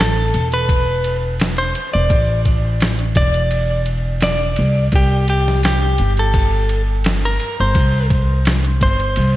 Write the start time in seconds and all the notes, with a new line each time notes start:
Already playing: A1
0.00 A4, snare
0.34 E1, ride
0.52 B4, ride
0.69 kick, ride
1.04 ride
1.40 snare, ride
1.58 C5
1.75 ride
1.93 E1 D5
2.10 A1, kick, ride
2.45 kick, ride
2.80 snare, ride
2.99 ride
3.15 E1 D5, kick, ride
3.34 ride
3.51 ride
3.86 ride
4.21 D5, snare, ride
4.56 C2, ride
4.92 C2 G4, kick, ride
5.28 G4, ride
5.48 snare
5.63 G4, snare, ride
5.98 G1, ride
6.17 A4, ride
6.34 kick, ride
6.69 ride
7.04 snare, ride
7.25 A#4
7.40 ride
7.60 G1 C5
7.75 C2, kick, ride
8.10 kick, ride
8.45 snare, ride
8.64 ride
8.81 G1 C5, kick, ride
9.00 ride
9.16 C2, ride